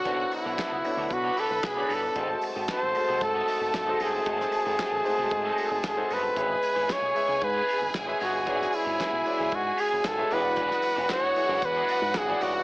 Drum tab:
HH |x-o-x-o-x-o-x-o-|x-o---o-x-o-x-o-|x-o-x-o-x-o-x-o-|x-o-x-o-x-o-x-o-|
CP |----x-------x---|----x-------x---|----x-------x---|----x-------x---|
SD |----o-------o---|----o-------o---|-o--o-------o---|----o-------o---|
BD |o---o---o---o---|o---o---o---o---|o---o---o---o---|o---o---o---o---|

HH |x-o-x-o-x-o-x-o-|x-o-x-o-x-o-x-o-|
CP |----x-------x---|----x-------x---|
SD |-o--o-------o---|-o--o-------o---|
BD |o---o---o---o---|o---o---o---o---|